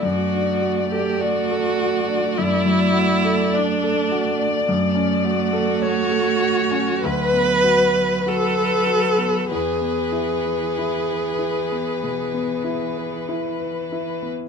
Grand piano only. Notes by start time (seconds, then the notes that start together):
0.02 F#2
0.33 D4
0.62 F#4
0.92 A4
1.20 D5
1.51 A4
1.78 F#4
2.08 D4
2.39 F#2
2.65 F#3
2.93 F#4
3.25 A4
3.53 D5
3.83 A4
4.12 F#4
4.39 D4
4.68 F#2
4.95 C#4
5.25 F#4
5.53 A4
5.82 C#5
6.11 A4
6.42 F#4
6.71 C#4
7.03 D2
7.34 B3
7.64 F#4
7.95 B4
8.26 F#4
8.57 B4
8.87 F#4
9.18 B3
9.51 E2
9.81 B3
10.12 E4
10.45 B4
10.78 E4
11.10 B4
11.39 E4
11.72 B3
12.04 B2
12.34 B3
12.64 E4
12.96 B4
13.29 E4
13.60 B4
13.92 E4
14.22 B3